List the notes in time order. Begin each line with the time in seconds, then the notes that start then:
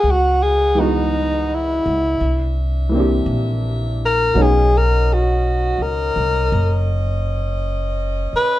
Already playing: G#4 F#5
0.03 C#2 B4 D#5
0.11 F#4
0.43 G#4
0.75 E3 G#3 B3
0.79 D#4 F#4 D#5
1.54 E4
1.86 C#2
2.20 C2 D4 E5
2.89 E3 A#3
2.94 C4 D4
3.00 G4
3.26 A#1
4.05 A#4
4.34 B1 F#3 B3 C#4 D#4 D#5
4.39 G#4 C#5
4.77 A#4
5.13 F#4
5.79 C#2 A#4
6.16 C2
6.52 F#1
8.33 B4, muted upright bass stroke